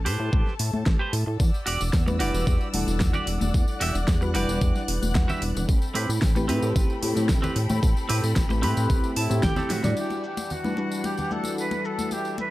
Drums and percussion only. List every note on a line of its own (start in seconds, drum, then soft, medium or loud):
0.06 open hi-hat loud
0.33 kick loud
0.46 snare soft
0.59 open hi-hat loud
0.73 high conga medium
0.86 kick loud
0.86 snare loud
1.13 open hi-hat loud
1.40 kick loud
1.40 tambourine medium
1.54 tambourine soft
1.67 open hi-hat loud
1.81 tambourine medium
1.93 kick loud
1.93 snare loud
1.93 tambourine medium
2.08 tambourine soft
2.08 high conga medium
2.20 open hi-hat loud
2.34 tambourine medium
2.47 kick loud
2.47 tambourine medium
2.61 tambourine soft
2.74 open hi-hat loud
2.74 high conga medium
2.87 snare soft
2.87 tambourine medium
3.00 kick loud
3.00 snare loud
3.00 tambourine medium
3.14 tambourine soft
3.14 low conga medium
3.27 open hi-hat loud
3.41 tambourine medium
3.41 high conga medium
3.41 low conga medium
3.54 kick loud
3.54 tambourine medium
3.68 tambourine soft
3.81 open hi-hat medium
3.95 tambourine medium
4.08 kick medium
4.08 snare loud
4.08 tambourine medium
4.22 tambourine soft
4.35 open hi-hat loud
4.49 tambourine medium
4.61 kick loud
4.61 tambourine medium
4.75 snare soft
4.75 tambourine soft
4.88 open hi-hat loud
5.02 tambourine medium
5.02 high conga medium
5.14 kick loud
5.14 snare loud
5.14 tambourine medium
5.29 tambourine soft
5.29 low conga medium
5.42 open hi-hat medium
5.57 tambourine medium
5.57 low conga medium
5.69 kick loud
5.69 tambourine medium
5.82 tambourine soft
5.95 open hi-hat medium
6.10 tambourine medium
6.22 kick medium
6.22 snare loud
6.22 tambourine medium
6.36 tambourine soft
6.36 high conga medium
6.49 open hi-hat loud
6.62 tambourine medium
6.76 kick loud
6.76 tambourine medium
6.90 tambourine soft
7.03 open hi-hat medium
7.03 high conga medium
7.16 snare soft
7.16 tambourine medium
7.29 kick loud
7.29 snare loud
7.29 tambourine medium
7.43 tambourine soft
7.43 low conga loud
7.56 open hi-hat loud
7.70 tambourine medium
7.70 high conga medium
7.70 low conga medium
7.83 kick loud
7.83 tambourine medium
7.97 tambourine soft
8.09 open hi-hat medium
8.24 tambourine medium
8.36 kick loud
8.36 snare loud
8.36 tambourine medium
8.50 tambourine soft
8.50 high conga medium
8.63 open hi-hat loud
8.63 high conga medium
8.77 tambourine medium
8.90 kick loud
8.90 tambourine medium
9.04 tambourine soft
9.16 open hi-hat loud
9.31 tambourine medium
9.31 high conga medium
9.43 kick loud
9.43 snare loud
9.43 high tom medium
9.43 tambourine medium
9.56 snare medium
9.56 tambourine soft
9.56 low conga medium
9.70 snare medium
9.70 open hi-hat loud
9.84 snare medium
9.84 tambourine medium
9.84 low conga medium
9.97 crash medium
9.97 tambourine medium
9.97 cabasa soft
10.10 tambourine soft
10.10 muted conga soft
10.10 cabasa soft
10.24 cabasa medium
10.37 tambourine medium
10.37 muted conga medium
10.37 cabasa soft
10.50 tambourine medium
10.50 low conga medium
10.50 cabasa soft
10.64 tambourine soft
10.64 high conga medium
10.64 cabasa soft
10.77 muted conga soft
10.77 cabasa medium
10.91 tambourine medium
10.91 cabasa soft
11.04 tambourine soft
11.04 muted conga medium
11.04 cabasa soft
11.17 tambourine soft
11.17 low conga medium
11.17 cabasa soft
11.31 high conga medium
11.31 cabasa medium
11.44 tambourine medium
11.44 muted conga medium
11.44 cabasa soft
11.58 tambourine medium
11.58 cabasa soft
11.71 tambourine soft
11.71 muted conga medium
11.71 cabasa soft
11.85 cabasa medium
11.99 tambourine medium
11.99 high conga medium
11.99 cabasa soft
12.11 tambourine medium
12.11 muted conga soft
12.11 cabasa soft
12.25 tambourine soft
12.25 cabasa soft
12.38 muted conga medium
12.38 cabasa medium